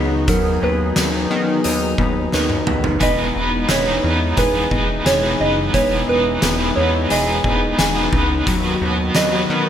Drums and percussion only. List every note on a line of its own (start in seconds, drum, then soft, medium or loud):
0.28 kick loud
0.28 closed hi-hat medium
0.96 snare loud
0.96 closed hi-hat medium
1.64 closed hi-hat medium
1.98 kick medium
2.32 snare medium
2.50 high tom medium
2.67 mid tom medium
2.84 floor tom medium
3.00 kick medium
3.00 closed hi-hat medium
3.69 snare loud
3.69 closed hi-hat medium
4.37 kick medium
4.37 closed hi-hat medium
4.71 kick medium
5.06 snare medium
5.06 closed hi-hat medium
5.74 kick medium
5.74 closed hi-hat medium
6.42 snare loud
6.42 closed hi-hat medium
7.10 closed hi-hat medium
7.44 kick medium
7.79 snare loud
7.79 closed hi-hat medium
8.13 kick loud
8.47 kick loud
8.47 closed hi-hat medium
9.15 snare loud
9.15 closed hi-hat medium